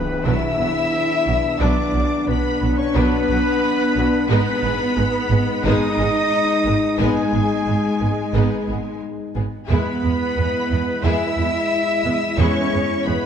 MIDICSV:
0, 0, Header, 1, 10, 480
1, 0, Start_track
1, 0, Tempo, 674157
1, 1143, Time_signature, 4, 2, 24, 8
1, 9440, End_track
2, 0, Start_track
2, 0, Title_t, "Violin section"
2, 0, Program_c, 0, 48
2, 0, Note_on_c, 0, 83, 89
2, 154, Note_off_c, 0, 83, 0
2, 182, Note_on_c, 0, 88, 99
2, 1143, Note_off_c, 0, 88, 0
2, 1146, Note_on_c, 0, 86, 84
2, 1625, Note_off_c, 0, 86, 0
2, 1625, Note_on_c, 0, 83, 96
2, 1977, Note_off_c, 0, 83, 0
2, 1980, Note_on_c, 0, 85, 91
2, 2098, Note_on_c, 0, 83, 108
2, 2099, Note_off_c, 0, 85, 0
2, 3054, Note_off_c, 0, 83, 0
2, 3062, Note_on_c, 0, 83, 119
2, 4004, Note_off_c, 0, 83, 0
2, 4022, Note_on_c, 0, 87, 125
2, 4964, Note_off_c, 0, 87, 0
2, 4983, Note_on_c, 0, 80, 102
2, 6395, Note_off_c, 0, 80, 0
2, 6904, Note_on_c, 0, 83, 96
2, 7835, Note_off_c, 0, 83, 0
2, 7867, Note_on_c, 0, 88, 108
2, 8806, Note_off_c, 0, 88, 0
2, 8823, Note_on_c, 0, 85, 107
2, 9294, Note_on_c, 0, 83, 94
2, 9303, Note_off_c, 0, 85, 0
2, 9440, Note_off_c, 0, 83, 0
2, 9440, End_track
3, 0, Start_track
3, 0, Title_t, "Flute section"
3, 0, Program_c, 1, 73
3, 0, Note_on_c, 1, 71, 99
3, 156, Note_off_c, 1, 71, 0
3, 173, Note_on_c, 1, 76, 104
3, 1119, Note_off_c, 1, 76, 0
3, 1142, Note_on_c, 1, 74, 78
3, 1613, Note_off_c, 1, 74, 0
3, 1629, Note_on_c, 1, 71, 81
3, 1986, Note_off_c, 1, 71, 0
3, 1988, Note_on_c, 1, 73, 85
3, 2105, Note_on_c, 1, 71, 109
3, 2106, Note_off_c, 1, 73, 0
3, 3058, Note_off_c, 1, 71, 0
3, 3066, Note_on_c, 1, 71, 102
3, 4006, Note_off_c, 1, 71, 0
3, 4020, Note_on_c, 1, 75, 120
3, 4804, Note_off_c, 1, 75, 0
3, 4982, Note_on_c, 1, 68, 87
3, 6394, Note_off_c, 1, 68, 0
3, 6902, Note_on_c, 1, 71, 90
3, 7834, Note_off_c, 1, 71, 0
3, 7863, Note_on_c, 1, 76, 96
3, 8823, Note_off_c, 1, 76, 0
3, 8823, Note_on_c, 1, 73, 101
3, 9294, Note_off_c, 1, 73, 0
3, 9297, Note_on_c, 1, 71, 84
3, 9440, Note_off_c, 1, 71, 0
3, 9440, End_track
4, 0, Start_track
4, 0, Title_t, "Trumpet"
4, 0, Program_c, 2, 56
4, 0, Note_on_c, 2, 71, 88
4, 177, Note_on_c, 2, 76, 107
4, 188, Note_off_c, 2, 71, 0
4, 1138, Note_on_c, 2, 74, 79
4, 1148, Note_off_c, 2, 76, 0
4, 1613, Note_off_c, 2, 74, 0
4, 1617, Note_on_c, 2, 71, 86
4, 1980, Note_on_c, 2, 73, 89
4, 1991, Note_off_c, 2, 71, 0
4, 2098, Note_on_c, 2, 71, 111
4, 2109, Note_off_c, 2, 73, 0
4, 3056, Note_off_c, 2, 71, 0
4, 3060, Note_on_c, 2, 71, 107
4, 3807, Note_off_c, 2, 71, 0
4, 4020, Note_on_c, 2, 75, 123
4, 4953, Note_off_c, 2, 75, 0
4, 4983, Note_on_c, 2, 68, 87
4, 6395, Note_off_c, 2, 68, 0
4, 6900, Note_on_c, 2, 71, 87
4, 7858, Note_on_c, 2, 76, 102
4, 7869, Note_off_c, 2, 71, 0
4, 8812, Note_off_c, 2, 76, 0
4, 8817, Note_on_c, 2, 73, 96
4, 9291, Note_off_c, 2, 73, 0
4, 9299, Note_on_c, 2, 71, 80
4, 9440, Note_off_c, 2, 71, 0
4, 9440, End_track
5, 0, Start_track
5, 0, Title_t, "Violin section"
5, 0, Program_c, 3, 48
5, 174, Note_on_c, 3, 71, 70
5, 176, Note_on_c, 3, 62, 75
5, 401, Note_off_c, 3, 71, 0
5, 403, Note_off_c, 3, 62, 0
5, 409, Note_on_c, 3, 59, 67
5, 412, Note_on_c, 3, 66, 61
5, 466, Note_off_c, 3, 59, 0
5, 469, Note_off_c, 3, 66, 0
5, 893, Note_on_c, 3, 59, 60
5, 893, Note_on_c, 3, 66, 58
5, 950, Note_off_c, 3, 59, 0
5, 950, Note_off_c, 3, 66, 0
5, 1135, Note_on_c, 3, 62, 88
5, 1138, Note_on_c, 3, 71, 81
5, 1362, Note_off_c, 3, 62, 0
5, 1364, Note_off_c, 3, 71, 0
5, 1377, Note_on_c, 3, 66, 51
5, 1379, Note_on_c, 3, 59, 51
5, 1434, Note_off_c, 3, 66, 0
5, 1436, Note_off_c, 3, 59, 0
5, 1621, Note_on_c, 3, 62, 58
5, 1622, Note_on_c, 3, 59, 54
5, 1678, Note_off_c, 3, 62, 0
5, 1679, Note_off_c, 3, 59, 0
5, 1864, Note_on_c, 3, 66, 58
5, 1865, Note_on_c, 3, 59, 68
5, 1921, Note_off_c, 3, 66, 0
5, 1922, Note_off_c, 3, 59, 0
5, 2101, Note_on_c, 3, 62, 91
5, 2101, Note_on_c, 3, 71, 85
5, 2325, Note_off_c, 3, 62, 0
5, 2325, Note_off_c, 3, 71, 0
5, 2346, Note_on_c, 3, 59, 72
5, 2348, Note_on_c, 3, 66, 75
5, 2403, Note_off_c, 3, 59, 0
5, 2405, Note_off_c, 3, 66, 0
5, 2826, Note_on_c, 3, 59, 71
5, 2827, Note_on_c, 3, 66, 83
5, 2883, Note_off_c, 3, 59, 0
5, 2884, Note_off_c, 3, 66, 0
5, 3067, Note_on_c, 3, 63, 103
5, 3067, Note_on_c, 3, 71, 93
5, 3289, Note_off_c, 3, 63, 0
5, 3289, Note_off_c, 3, 71, 0
5, 3305, Note_on_c, 3, 68, 58
5, 3307, Note_on_c, 3, 59, 69
5, 3362, Note_off_c, 3, 68, 0
5, 3364, Note_off_c, 3, 59, 0
5, 3538, Note_on_c, 3, 63, 67
5, 3539, Note_on_c, 3, 56, 54
5, 3595, Note_off_c, 3, 63, 0
5, 3596, Note_off_c, 3, 56, 0
5, 3780, Note_on_c, 3, 59, 73
5, 3781, Note_on_c, 3, 68, 78
5, 3837, Note_off_c, 3, 59, 0
5, 3838, Note_off_c, 3, 68, 0
5, 4018, Note_on_c, 3, 63, 89
5, 4022, Note_on_c, 3, 71, 95
5, 4244, Note_off_c, 3, 63, 0
5, 4246, Note_off_c, 3, 71, 0
5, 4255, Note_on_c, 3, 68, 81
5, 4256, Note_on_c, 3, 59, 71
5, 4312, Note_off_c, 3, 68, 0
5, 4313, Note_off_c, 3, 59, 0
5, 4740, Note_on_c, 3, 59, 72
5, 4740, Note_on_c, 3, 68, 77
5, 4797, Note_off_c, 3, 59, 0
5, 4797, Note_off_c, 3, 68, 0
5, 4978, Note_on_c, 3, 71, 89
5, 4979, Note_on_c, 3, 63, 92
5, 5204, Note_off_c, 3, 63, 0
5, 5204, Note_off_c, 3, 71, 0
5, 5219, Note_on_c, 3, 59, 53
5, 5222, Note_on_c, 3, 68, 53
5, 5276, Note_off_c, 3, 59, 0
5, 5279, Note_off_c, 3, 68, 0
5, 5456, Note_on_c, 3, 56, 54
5, 5457, Note_on_c, 3, 63, 59
5, 5513, Note_off_c, 3, 56, 0
5, 5514, Note_off_c, 3, 63, 0
5, 5705, Note_on_c, 3, 59, 61
5, 5705, Note_on_c, 3, 68, 65
5, 5762, Note_off_c, 3, 59, 0
5, 5762, Note_off_c, 3, 68, 0
5, 5941, Note_on_c, 3, 63, 71
5, 5942, Note_on_c, 3, 71, 83
5, 6166, Note_off_c, 3, 63, 0
5, 6166, Note_off_c, 3, 71, 0
5, 6182, Note_on_c, 3, 68, 59
5, 6186, Note_on_c, 3, 59, 61
5, 6239, Note_off_c, 3, 68, 0
5, 6243, Note_off_c, 3, 59, 0
5, 6658, Note_on_c, 3, 59, 60
5, 6659, Note_on_c, 3, 68, 60
5, 6715, Note_off_c, 3, 59, 0
5, 6716, Note_off_c, 3, 68, 0
5, 6895, Note_on_c, 3, 68, 73
5, 6896, Note_on_c, 3, 64, 84
5, 7122, Note_off_c, 3, 68, 0
5, 7123, Note_off_c, 3, 64, 0
5, 7139, Note_on_c, 3, 59, 54
5, 7140, Note_on_c, 3, 64, 58
5, 7196, Note_off_c, 3, 59, 0
5, 7197, Note_off_c, 3, 64, 0
5, 7385, Note_on_c, 3, 56, 50
5, 7387, Note_on_c, 3, 59, 47
5, 7442, Note_off_c, 3, 56, 0
5, 7444, Note_off_c, 3, 59, 0
5, 7627, Note_on_c, 3, 59, 52
5, 7627, Note_on_c, 3, 64, 62
5, 7684, Note_off_c, 3, 59, 0
5, 7684, Note_off_c, 3, 64, 0
5, 7863, Note_on_c, 3, 64, 88
5, 7863, Note_on_c, 3, 68, 90
5, 8086, Note_off_c, 3, 68, 0
5, 8087, Note_off_c, 3, 64, 0
5, 8101, Note_on_c, 3, 59, 67
5, 8101, Note_on_c, 3, 64, 59
5, 8158, Note_off_c, 3, 59, 0
5, 8158, Note_off_c, 3, 64, 0
5, 8580, Note_on_c, 3, 59, 64
5, 8581, Note_on_c, 3, 64, 66
5, 8637, Note_off_c, 3, 59, 0
5, 8638, Note_off_c, 3, 64, 0
5, 8817, Note_on_c, 3, 68, 85
5, 8818, Note_on_c, 3, 64, 92
5, 9043, Note_off_c, 3, 68, 0
5, 9044, Note_off_c, 3, 64, 0
5, 9058, Note_on_c, 3, 64, 62
5, 9062, Note_on_c, 3, 59, 52
5, 9115, Note_off_c, 3, 64, 0
5, 9119, Note_off_c, 3, 59, 0
5, 9302, Note_on_c, 3, 56, 66
5, 9305, Note_on_c, 3, 59, 58
5, 9359, Note_off_c, 3, 56, 0
5, 9362, Note_off_c, 3, 59, 0
5, 9440, End_track
6, 0, Start_track
6, 0, Title_t, "French horn section"
6, 0, Program_c, 4, 60
6, 0, Note_on_c, 4, 59, 91
6, 0, Note_on_c, 4, 62, 89
6, 3027, Note_off_c, 4, 59, 0
6, 3028, Note_off_c, 4, 62, 0
6, 3053, Note_on_c, 4, 56, 98
6, 3058, Note_on_c, 4, 63, 95
6, 6642, Note_off_c, 4, 56, 0
6, 6644, Note_off_c, 4, 63, 0
6, 6897, Note_on_c, 4, 64, 75
6, 6901, Note_on_c, 4, 56, 78
6, 9440, Note_off_c, 4, 56, 0
6, 9440, Note_off_c, 4, 64, 0
6, 9440, End_track
7, 0, Start_track
7, 0, Title_t, "Cello section"
7, 0, Program_c, 5, 48
7, 0, Note_on_c, 5, 59, 98
7, 152, Note_off_c, 5, 59, 0
7, 184, Note_on_c, 5, 64, 93
7, 1143, Note_on_c, 5, 62, 80
7, 1144, Note_off_c, 5, 64, 0
7, 1618, Note_on_c, 5, 59, 81
7, 1623, Note_off_c, 5, 62, 0
7, 1980, Note_on_c, 5, 61, 84
7, 1981, Note_off_c, 5, 59, 0
7, 2100, Note_on_c, 5, 59, 98
7, 2102, Note_off_c, 5, 61, 0
7, 3043, Note_off_c, 5, 59, 0
7, 3062, Note_on_c, 5, 59, 110
7, 4003, Note_off_c, 5, 59, 0
7, 4027, Note_on_c, 5, 63, 111
7, 4985, Note_off_c, 5, 63, 0
7, 4987, Note_on_c, 5, 56, 89
7, 6397, Note_off_c, 5, 56, 0
7, 6903, Note_on_c, 5, 59, 89
7, 7835, Note_off_c, 5, 59, 0
7, 7862, Note_on_c, 5, 64, 88
7, 8822, Note_on_c, 5, 61, 104
7, 8823, Note_off_c, 5, 64, 0
7, 9293, Note_off_c, 5, 61, 0
7, 9301, Note_on_c, 5, 59, 86
7, 9440, Note_off_c, 5, 59, 0
7, 9440, End_track
8, 0, Start_track
8, 0, Title_t, "Viola section"
8, 0, Program_c, 6, 48
8, 181, Note_on_c, 6, 59, 72
8, 185, Note_on_c, 6, 54, 67
8, 405, Note_off_c, 6, 59, 0
8, 408, Note_off_c, 6, 54, 0
8, 420, Note_on_c, 6, 59, 62
8, 422, Note_on_c, 6, 54, 63
8, 477, Note_off_c, 6, 59, 0
8, 479, Note_off_c, 6, 54, 0
8, 900, Note_on_c, 6, 59, 73
8, 902, Note_on_c, 6, 54, 61
8, 957, Note_off_c, 6, 59, 0
8, 959, Note_off_c, 6, 54, 0
8, 1146, Note_on_c, 6, 54, 72
8, 1148, Note_on_c, 6, 59, 70
8, 1368, Note_off_c, 6, 54, 0
8, 1369, Note_off_c, 6, 59, 0
8, 1388, Note_on_c, 6, 59, 57
8, 1389, Note_on_c, 6, 54, 58
8, 1445, Note_off_c, 6, 59, 0
8, 1446, Note_off_c, 6, 54, 0
8, 1625, Note_on_c, 6, 54, 58
8, 1627, Note_on_c, 6, 59, 59
8, 1682, Note_off_c, 6, 54, 0
8, 1684, Note_off_c, 6, 59, 0
8, 1866, Note_on_c, 6, 54, 60
8, 1868, Note_on_c, 6, 59, 62
8, 1923, Note_off_c, 6, 54, 0
8, 1925, Note_off_c, 6, 59, 0
8, 2101, Note_on_c, 6, 54, 81
8, 2102, Note_on_c, 6, 59, 77
8, 2325, Note_off_c, 6, 54, 0
8, 2326, Note_off_c, 6, 59, 0
8, 2349, Note_on_c, 6, 54, 72
8, 2351, Note_on_c, 6, 59, 73
8, 2406, Note_off_c, 6, 54, 0
8, 2408, Note_off_c, 6, 59, 0
8, 2829, Note_on_c, 6, 59, 84
8, 2830, Note_on_c, 6, 54, 75
8, 2886, Note_off_c, 6, 59, 0
8, 2887, Note_off_c, 6, 54, 0
8, 3059, Note_on_c, 6, 56, 94
8, 3059, Note_on_c, 6, 59, 99
8, 3284, Note_off_c, 6, 56, 0
8, 3284, Note_off_c, 6, 59, 0
8, 3295, Note_on_c, 6, 59, 77
8, 3297, Note_on_c, 6, 56, 72
8, 3352, Note_off_c, 6, 59, 0
8, 3354, Note_off_c, 6, 56, 0
8, 3536, Note_on_c, 6, 56, 79
8, 3538, Note_on_c, 6, 59, 69
8, 3593, Note_off_c, 6, 56, 0
8, 3595, Note_off_c, 6, 59, 0
8, 3780, Note_on_c, 6, 56, 66
8, 3780, Note_on_c, 6, 59, 73
8, 3837, Note_off_c, 6, 56, 0
8, 3837, Note_off_c, 6, 59, 0
8, 4021, Note_on_c, 6, 56, 98
8, 4021, Note_on_c, 6, 59, 89
8, 4245, Note_off_c, 6, 56, 0
8, 4245, Note_off_c, 6, 59, 0
8, 4257, Note_on_c, 6, 59, 77
8, 4258, Note_on_c, 6, 56, 83
8, 4314, Note_off_c, 6, 59, 0
8, 4315, Note_off_c, 6, 56, 0
8, 4742, Note_on_c, 6, 56, 70
8, 4743, Note_on_c, 6, 59, 83
8, 4799, Note_off_c, 6, 56, 0
8, 4800, Note_off_c, 6, 59, 0
8, 4981, Note_on_c, 6, 59, 88
8, 4982, Note_on_c, 6, 56, 83
8, 5206, Note_off_c, 6, 56, 0
8, 5206, Note_off_c, 6, 59, 0
8, 5224, Note_on_c, 6, 56, 55
8, 5227, Note_on_c, 6, 59, 61
8, 5281, Note_off_c, 6, 56, 0
8, 5283, Note_off_c, 6, 59, 0
8, 5464, Note_on_c, 6, 56, 60
8, 5466, Note_on_c, 6, 59, 58
8, 5521, Note_off_c, 6, 56, 0
8, 5523, Note_off_c, 6, 59, 0
8, 5708, Note_on_c, 6, 56, 59
8, 5709, Note_on_c, 6, 59, 67
8, 5765, Note_off_c, 6, 56, 0
8, 5766, Note_off_c, 6, 59, 0
8, 5942, Note_on_c, 6, 56, 74
8, 5943, Note_on_c, 6, 59, 82
8, 6166, Note_off_c, 6, 56, 0
8, 6166, Note_off_c, 6, 59, 0
8, 6183, Note_on_c, 6, 59, 62
8, 6186, Note_on_c, 6, 56, 57
8, 6240, Note_off_c, 6, 59, 0
8, 6243, Note_off_c, 6, 56, 0
8, 6666, Note_on_c, 6, 56, 68
8, 6666, Note_on_c, 6, 59, 66
8, 6723, Note_off_c, 6, 56, 0
8, 6723, Note_off_c, 6, 59, 0
8, 6906, Note_on_c, 6, 59, 77
8, 6908, Note_on_c, 6, 56, 77
8, 7128, Note_off_c, 6, 59, 0
8, 7129, Note_off_c, 6, 56, 0
8, 7145, Note_on_c, 6, 56, 58
8, 7147, Note_on_c, 6, 59, 54
8, 7202, Note_off_c, 6, 56, 0
8, 7204, Note_off_c, 6, 59, 0
8, 7384, Note_on_c, 6, 56, 56
8, 7386, Note_on_c, 6, 59, 59
8, 7441, Note_off_c, 6, 56, 0
8, 7443, Note_off_c, 6, 59, 0
8, 7630, Note_on_c, 6, 56, 59
8, 7631, Note_on_c, 6, 59, 50
8, 7686, Note_off_c, 6, 56, 0
8, 7688, Note_off_c, 6, 59, 0
8, 7872, Note_on_c, 6, 56, 69
8, 7874, Note_on_c, 6, 59, 78
8, 8091, Note_off_c, 6, 56, 0
8, 8092, Note_off_c, 6, 59, 0
8, 8112, Note_on_c, 6, 59, 61
8, 8113, Note_on_c, 6, 56, 67
8, 8169, Note_off_c, 6, 59, 0
8, 8170, Note_off_c, 6, 56, 0
8, 8580, Note_on_c, 6, 59, 71
8, 8581, Note_on_c, 6, 56, 77
8, 8637, Note_off_c, 6, 59, 0
8, 8638, Note_off_c, 6, 56, 0
8, 8819, Note_on_c, 6, 56, 79
8, 8819, Note_on_c, 6, 59, 89
8, 9044, Note_off_c, 6, 56, 0
8, 9044, Note_off_c, 6, 59, 0
8, 9056, Note_on_c, 6, 59, 61
8, 9057, Note_on_c, 6, 56, 62
8, 9113, Note_off_c, 6, 59, 0
8, 9114, Note_off_c, 6, 56, 0
8, 9294, Note_on_c, 6, 56, 67
8, 9295, Note_on_c, 6, 59, 66
8, 9351, Note_off_c, 6, 56, 0
8, 9352, Note_off_c, 6, 59, 0
8, 9440, End_track
9, 0, Start_track
9, 0, Title_t, "Double bass section"
9, 0, Program_c, 7, 48
9, 181, Note_on_c, 7, 35, 82
9, 238, Note_off_c, 7, 35, 0
9, 423, Note_on_c, 7, 35, 57
9, 480, Note_off_c, 7, 35, 0
9, 902, Note_on_c, 7, 35, 56
9, 959, Note_off_c, 7, 35, 0
9, 1144, Note_on_c, 7, 35, 84
9, 1201, Note_off_c, 7, 35, 0
9, 1379, Note_on_c, 7, 35, 59
9, 1436, Note_off_c, 7, 35, 0
9, 1620, Note_on_c, 7, 35, 59
9, 1677, Note_off_c, 7, 35, 0
9, 1861, Note_on_c, 7, 35, 62
9, 1918, Note_off_c, 7, 35, 0
9, 2099, Note_on_c, 7, 35, 93
9, 2156, Note_off_c, 7, 35, 0
9, 2338, Note_on_c, 7, 35, 67
9, 2395, Note_off_c, 7, 35, 0
9, 2821, Note_on_c, 7, 35, 71
9, 2878, Note_off_c, 7, 35, 0
9, 3061, Note_on_c, 7, 32, 98
9, 3118, Note_off_c, 7, 32, 0
9, 3302, Note_on_c, 7, 32, 73
9, 3359, Note_off_c, 7, 32, 0
9, 3542, Note_on_c, 7, 32, 67
9, 3599, Note_off_c, 7, 32, 0
9, 3778, Note_on_c, 7, 32, 70
9, 3835, Note_off_c, 7, 32, 0
9, 4019, Note_on_c, 7, 32, 110
9, 4076, Note_off_c, 7, 32, 0
9, 4260, Note_on_c, 7, 32, 73
9, 4317, Note_off_c, 7, 32, 0
9, 4741, Note_on_c, 7, 32, 67
9, 4798, Note_off_c, 7, 32, 0
9, 4982, Note_on_c, 7, 32, 94
9, 5039, Note_off_c, 7, 32, 0
9, 5225, Note_on_c, 7, 32, 59
9, 5282, Note_off_c, 7, 32, 0
9, 5466, Note_on_c, 7, 32, 60
9, 5522, Note_off_c, 7, 32, 0
9, 5700, Note_on_c, 7, 32, 58
9, 5757, Note_off_c, 7, 32, 0
9, 5943, Note_on_c, 7, 32, 87
9, 6000, Note_off_c, 7, 32, 0
9, 6189, Note_on_c, 7, 32, 58
9, 6246, Note_off_c, 7, 32, 0
9, 6664, Note_on_c, 7, 32, 59
9, 6721, Note_off_c, 7, 32, 0
9, 6904, Note_on_c, 7, 40, 80
9, 6961, Note_off_c, 7, 40, 0
9, 7146, Note_on_c, 7, 40, 55
9, 7203, Note_off_c, 7, 40, 0
9, 7385, Note_on_c, 7, 40, 57
9, 7442, Note_off_c, 7, 40, 0
9, 7624, Note_on_c, 7, 40, 52
9, 7681, Note_off_c, 7, 40, 0
9, 7861, Note_on_c, 7, 40, 84
9, 7918, Note_off_c, 7, 40, 0
9, 8098, Note_on_c, 7, 40, 55
9, 8155, Note_off_c, 7, 40, 0
9, 8578, Note_on_c, 7, 40, 56
9, 8635, Note_off_c, 7, 40, 0
9, 8817, Note_on_c, 7, 40, 92
9, 8874, Note_off_c, 7, 40, 0
9, 9058, Note_on_c, 7, 40, 62
9, 9115, Note_off_c, 7, 40, 0
9, 9300, Note_on_c, 7, 40, 64
9, 9357, Note_off_c, 7, 40, 0
9, 9440, End_track
10, 0, Start_track
10, 0, Title_t, "Sub drop"
10, 0, Program_c, 8, 103
10, 0, Note_on_c, 8, 60, 71
10, 1143, Note_off_c, 8, 60, 0
10, 9440, End_track
0, 0, End_of_file